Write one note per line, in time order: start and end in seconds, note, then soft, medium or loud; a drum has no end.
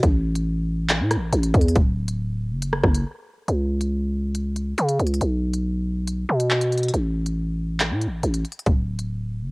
0.03 1.02 A1 loud
0.03 kick loud
0.03 closed hi-hat medium
0.35 closed hi-hat medium
0.89 clap loud
0.89 closed hi-hat medium
1.00 1.18 A2 loud
1.11 cross-stick medium
1.11 closed hi-hat medium
1.16 1.32 A1 loud
1.33 1.53 A1 loud
1.33 closed hi-hat medium
1.43 closed hi-hat medium
1.54 1.75 E2 loud
1.54 kick loud
1.54 closed hi-hat soft
1.61 closed hi-hat medium
1.68 closed hi-hat medium
1.76 2.53 D1 loud
1.76 kick loud
1.76 closed hi-hat medium
2.08 closed hi-hat medium
2.51 2.82 F#1 loud
2.62 closed hi-hat medium
2.73 cross-stick medium
2.84 3.04 F#1 loud
2.84 kick medium
2.84 cross-stick medium
2.95 closed hi-hat medium
3.48 4.74 C#2 loud
3.48 closed hi-hat medium
3.81 closed hi-hat medium
4.35 closed hi-hat medium
4.56 closed hi-hat medium
4.78 4.99 C#3 loud
4.78 closed hi-hat medium
4.89 closed hi-hat medium
4.99 5.20 C#2 loud
4.99 closed hi-hat soft
5.07 closed hi-hat medium
5.14 closed hi-hat medium
5.21 6.25 B1 loud
5.21 closed hi-hat medium
5.53 closed hi-hat medium
6.07 closed hi-hat medium
6.29 6.91 B2 loud
6.40 closed hi-hat medium
6.50 clap loud
6.61 closed hi-hat medium
6.72 closed hi-hat soft
6.78 closed hi-hat medium
6.83 closed hi-hat medium
6.88 closed hi-hat medium
6.94 7.92 A1 loud
6.94 closed hi-hat medium
7.26 closed hi-hat medium
7.80 clap loud
7.80 closed hi-hat medium
7.91 8.09 A2 loud
8.01 closed hi-hat medium
8.07 8.22 A1 medium
8.23 8.44 A1 loud
8.23 closed hi-hat medium
8.34 closed hi-hat medium
8.45 closed hi-hat soft
8.52 closed hi-hat medium
8.59 closed hi-hat medium
8.66 9.43 D1 loud
8.66 kick loud
8.66 closed hi-hat medium
8.99 closed hi-hat medium
9.42 9.51 F#1 loud